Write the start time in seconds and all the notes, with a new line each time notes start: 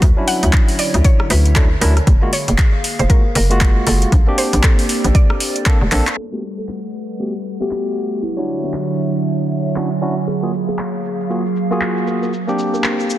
0.02 D2 D3 C#5 E5, kick, closed hi-hat
0.16 F#3 C#4 D4 E4
0.28 F#5, open hi-hat
0.43 D2, closed hi-hat
0.53 kick, clap, closed hi-hat
0.68 open hi-hat
0.79 D5, open hi-hat
0.94 D2, closed hi-hat
1.05 C#5, kick, closed hi-hat
1.20 cross-stick
1.30 D2 B4, open hi-hat
1.45 closed hi-hat
1.55 F#3 C#4 D4 E4 A4, kick, clap, closed hi-hat
1.81 D2 F#3 C#4 D4 E4 A#4, open hi-hat
1.97 cross-stick, closed hi-hat
2.07 F#1 A#3 G#4 F5, kick, closed hi-hat
2.22 G#3 A#3 F4 F#4
2.33 C#5, open hi-hat
2.48 F#1, closed hi-hat
2.58 kick, clap, closed hi-hat
2.84 open hi-hat
2.99 F#1 C5, closed hi-hat
3.09 G#3 A#3 F4 F#4 A#4, kick, closed hi-hat
3.35 F#1 A#4, open hi-hat
3.50 G#3 A#3 F4 F#4, closed hi-hat
3.61 kick, clap, closed hi-hat
3.87 F#1 A4, open hi-hat
4.02 closed hi-hat
4.12 A#1 A4 C5 D5, kick, closed hi-hat
4.27 A#3 C4 D4 G4
4.38 C5, open hi-hat
4.53 A#1, closed hi-hat
4.63 A4, kick, clap, closed hi-hat
4.79 open hi-hat
4.89 open hi-hat
5.04 A#1, closed hi-hat
5.15 D5, kick, closed hi-hat
5.30 cross-stick
5.40 open hi-hat
5.56 closed hi-hat
5.66 A#3 C4 D4 A4, kick, clap, closed hi-hat
5.81 F1
5.91 A#1 A#3 C4 D4 A4, clap, open hi-hat
6.07 clap, closed hi-hat
6.17 G3 A3 A4 B4 F#5, cabasa
6.32 A3 B3 F#4 G4
6.58 A4
6.68 clap
6.95 cabasa
7.10 cabasa
7.19 A3 B3 F#4 G4, cabasa
7.46 cabasa
7.60 A3 B3 F#4 G4, cabasa
7.71 clap
7.97 cabasa
8.13 cabasa
8.23 D3 F#3 E4 C#5 E5, cabasa
8.37 D4 E4 F#4 C#5, cabasa
8.49 cabasa
8.63 D4, cabasa
8.73 clap
8.90 cabasa
9.00 cabasa
9.15 cabasa
9.26 cabasa
9.41 cabasa
9.51 cabasa
9.66 cabasa
9.76 C#4 D4 E4 F#4, clap, cabasa
9.92 cabasa
10.02 C#4 D4 E4 F#4, cabasa
10.18 cabasa
10.28 A#3 G#4 F5, cabasa
10.43 A#3 F4 F#4 G#4, cabasa
10.54 cabasa
10.69 G#4, cabasa
10.79 clap, cabasa
10.95 cabasa
11.05 cabasa
11.20 cabasa
11.30 A#3 F4 F#4 G#4, cabasa
11.46 cabasa
11.56 cabasa
11.70 A#3 F4 F#4 G#4 A#4, cabasa
11.81 clap, cabasa
11.97 cabasa
12.07 A#4, cabasa
12.22 A#4, cabasa
12.33 A#3 D4 A4 C5, cabasa
12.47 A#3 C4 D4 G4, cabasa
12.59 cabasa
12.74 A#4, cabasa
12.84 A#4, clap, cabasa
13.00 cabasa
13.10 cabasa